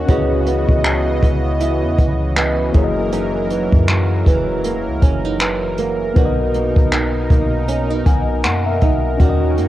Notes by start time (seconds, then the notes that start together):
Already playing: D#3 A#3 C#4 D#4 F#4 D#5
0.06 C#2 C#3 E3 B3 C#4 E4 F#4 B4 D#5, kick, closed hi-hat
0.12 D#5
0.46 B3, closed hi-hat
0.69 C#2, kick
0.84 E4, finger snap, closed hi-hat
1.22 C#2 B3, kick, closed hi-hat
1.60 E4, closed hi-hat
1.83 E2
1.98 C#2 F#4, kick, closed hi-hat
2.36 B3, finger snap, closed hi-hat
2.72 F#1 F#2 F#3 A#3 E4 F#4 G#4 A#4, kick, closed hi-hat
2.77 C#5
2.84 D#5
3.13 F#2 D#4, closed hi-hat
3.50 E3, closed hi-hat
3.72 F#2, kick
3.88 A#3, finger snap, closed hi-hat
4.26 E1 E3, kick, closed hi-hat
4.64 A#3, closed hi-hat
4.87 C#2
5.02 F#1 C#4, kick, closed hi-hat
5.25 D#4
5.40 E3, finger snap, closed hi-hat
5.78 A#3, closed hi-hat
6.14 B1 B2 B3 D#4 F#4, kick, closed hi-hat
6.18 A#4 D5
6.25 D#5
6.54 A#3, closed hi-hat
6.76 B1, kick
6.92 D#4, finger snap, closed hi-hat
7.30 B1 A#3, kick, closed hi-hat
7.68 C#4, closed hi-hat
7.90 D#4
8.06 B1 F#4 G#5, kick, closed hi-hat
8.44 F#2 A#3 F#5, finger snap, closed hi-hat
8.66 E5
8.81 B1 D#4 D#5, kick, closed hi-hat
9.17 D#2 D#3 C#4 D#4 F#4, kick, closed hi-hat
9.21 A#4 D5
9.29 D#5
9.58 F#2 A#3, closed hi-hat